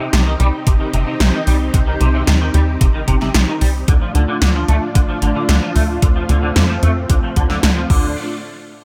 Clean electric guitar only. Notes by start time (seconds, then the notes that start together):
0.13 C3
0.27 D#3
0.40 G3
0.67 C3
0.80 D#3
0.94 C3
1.07 C3
1.20 C3
1.34 D#3
1.47 G3
1.74 C3
1.87 D#3
2.01 C3
2.14 C3
2.27 C3
2.41 D#3
2.54 G3
2.81 C3
2.94 D#3
3.08 C3
3.21 C3
3.35 C3
3.48 D#3
3.61 G3
3.88 D3
4.02 F3
4.15 D3
4.28 D3
4.42 D3
4.55 F3
4.68 A3
4.95 D3
5.09 F3
5.22 D3
5.36 D3
5.49 D3
5.62 F3
5.76 A3
6.02 D3
6.16 F3
6.29 D3
6.43 D3
6.56 D3
6.69 F3
6.83 A3
7.10 D3
7.23 F3
7.36 D3
7.50 D3
7.63 D3
7.77 F3
7.90 D3